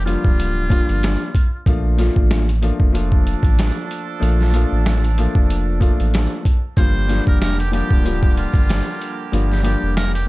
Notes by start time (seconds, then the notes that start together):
Already playing: F1 D3 A#3 G4
0.05 F3 G3 A#3 D4 F4, closed hi-hat
0.25 D1, kick
0.40 closed hi-hat
0.69 F3 G3 A#3 D4 F4, kick, closed hi-hat
0.89 G1, closed hi-hat
1.03 snare, closed hi-hat
1.35 kick, closed hi-hat
1.66 A#1 F3 A3 A#3 D4 F4, kick, closed hi-hat
1.98 F3 A3 A#3 D4 F4, snare, closed hi-hat
2.16 A1, kick
2.31 snare, closed hi-hat
2.49 closed hi-hat
2.62 F3 A3 A#3 D4 F4, closed hi-hat
2.80 F1, kick
2.92 F3 A3 A#3 D4 F4 A4, closed hi-hat
3.12 kick
3.27 closed hi-hat
3.43 A1, kick, closed hi-hat
3.59 snare, closed hi-hat
3.91 closed hi-hat
4.20 A#1 F3 A3 A#3 D4 F4, closed hi-hat
4.41 snare
4.53 F3 A3 A#3 D4 F4, closed hi-hat
4.72 A1
4.86 snare, closed hi-hat
5.04 closed hi-hat
5.17 F3 A3 A#3 D4 F4, closed hi-hat
5.35 F1, kick
5.50 closed hi-hat
5.80 F3 A3 A#3 D4 F4, kick, closed hi-hat
6.00 A1, closed hi-hat
6.14 snare, closed hi-hat
6.45 kick, closed hi-hat
6.77 G1 D3 F3 G3 A#3 D4 F4 G4 C5, kick, closed hi-hat
7.08 F3 G3 A#3 D4 F4, snare, closed hi-hat
7.27 F1 A#4, kick
7.41 A#4, snare, closed hi-hat
7.60 G4, closed hi-hat
7.71 F3 G3 A#3 D4 F4 G4, closed hi-hat
7.91 D1, kick
8.04 F3 G3 A#3 D4 F4, closed hi-hat
8.23 kick
8.37 F4, closed hi-hat
8.54 G1, kick, closed hi-hat
8.69 snare, closed hi-hat
9.02 closed hi-hat
9.32 G1 F3 G3 A#3 D4 F4, closed hi-hat
9.51 G4, snare
9.63 F3 G3 A#3 D4 F4 G4, closed hi-hat
9.83 F1
9.97 A#4, snare, closed hi-hat
10.15 G4, closed hi-hat